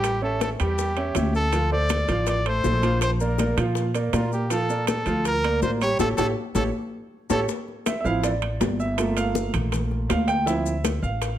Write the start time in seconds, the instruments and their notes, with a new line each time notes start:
Already playing: upright bass A1, grand piano G3 G4 G5, trumpet G4
0.04 high bongo, high conga, high timbale, maracas
0.22 grand piano C#4 C#5 E5, trumpet A4, high conga
0.40 grand piano C#4 C#5 E5, trumpet A4, high bongo, high conga, high timbale, maracas
0.60 upright bass E2, grand piano G3 G4 G5, trumpet G4, high bongo, high conga, high timbale, maracas
0.78 high bongo, high conga, maracas
0.96 grand piano C#4 C#5 E5, high bongo, high conga, high timbale
1.15 upright bass D2, grand piano C#4 C#5 E5, trumpet G4, high bongo, low bongo, high conga, high timbale, low timbale, maracas
1.34 trumpet A4, high bongo, high conga, maracas
1.52 grand piano F3 F4 F5, high bongo, high conga, high timbale, maracas
1.71 grand piano A3 A4 C5, trumpet D5, high conga
1.89 high bongo, high conga, high timbale, maracas
2.08 upright bass A1, grand piano F3 F4 F5, high bongo, high conga, high timbale, maracas
2.27 trumpet D5, high bongo, high conga, high timbale, maracas
2.45 grand piano A3 A4 C5, trumpet C5, high bongo, high conga, high timbale
2.64 upright bass A#1, grand piano A3 A4 C5, high bongo, low bongo, high conga, low timbale, maracas
2.83 grand piano F3 F4 F5, high bongo, high conga, high timbale, maracas
3.01 trumpet C5, high bongo, high conga, high timbale, maracas
3.20 grand piano A#3 A#4 D5, trumpet A#4, high conga, maracas
3.38 grand piano A#3 A#4 D5, high bongo, high conga, high timbale, maracas
3.57 upright bass A#2, grand piano F3 F4 F5, high bongo, high conga, high timbale, maracas
3.75 high bongo, high conga, maracas
3.94 grand piano A#3 A#4 D5, high bongo, high conga, high timbale, maracas
4.13 upright bass A#2, grand piano A#3 A#4 D5, trumpet F4, high bongo, low bongo, high conga, high timbale, low timbale, maracas
4.32 trumpet G4, high bongo, high conga, maracas
4.50 grand piano F3 F4 F5, trumpet A4, high bongo, high conga, high timbale, maracas
4.69 grand piano A#3 A#4 D5, high conga, maracas
4.87 trumpet A4, high bongo, high conga, high timbale, maracas
5.06 upright bass D2, grand piano F3 F4 F5, high bongo, high conga, high timbale, maracas
5.25 trumpet A#4, high bongo, high conga, high timbale, maracas
5.44 grand piano A#3 A#4 D5, high bongo, high conga, high timbale
5.62 upright bass A1, grand piano A#3 A#4 D5, trumpet C5, high bongo, low bongo, high conga, maracas
5.81 grand piano G3 G4 G5, trumpet C#5, high bongo, high timbale, maracas
5.99 upright bass A1, grand piano G4 A4 C#5, trumpet A4, low bongo, high conga, high timbale, maracas
6.17 upright bass A1, grand piano G4 A4 C#5, trumpet A4, low bongo, high conga, high timbale, maracas
6.55 upright bass A1, grand piano G4 A4 C#5, trumpet A4, low bongo, high conga, high timbale, maracas
7.30 upright bass A1, grand piano G4 A4 C#5, trumpet A4, low bongo, high conga, high timbale, maracas
7.49 high bongo, high conga, maracas
7.68 high conga
7.86 grand piano E5, high bongo, high conga, high timbale, low timbale, maracas
8.00 upright bass A1, grand piano E5
8.05 grand piano F3 C4 E4 F5, maracas
8.24 grand piano D5, high bongo, high conga, high timbale, maracas
8.42 high conga, high timbale
8.60 upright bass G1, high bongo, low bongo, high conga, high timbale, low timbale, maracas
8.80 grand piano E5, high conga, maracas
8.97 grand piano A3 A#3 F4, high bongo, high conga, high timbale, maracas
9.17 grand piano F5, high bongo, high conga, high timbale, maracas
9.35 high bongo, high conga, low timbale, maracas
9.54 upright bass A#1, high conga, low conga, high timbale, maracas
9.72 high bongo, high conga, low conga, high timbale, maracas
9.91 high bongo, high conga
10.10 upright bass D2, grand piano F5, high bongo, low bongo, high conga, high timbale, low timbale, maracas
10.28 grand piano G5, high bongo, high conga, high timbale, maracas
10.46 grand piano F3 C4 E4 E5, high bongo, high conga, maracas
10.66 high conga, maracas
10.84 high bongo, high conga, high timbale, low timbale, maracas
11.02 upright bass A1, grand piano F5, maracas
11.22 high bongo, high conga, high timbale, maracas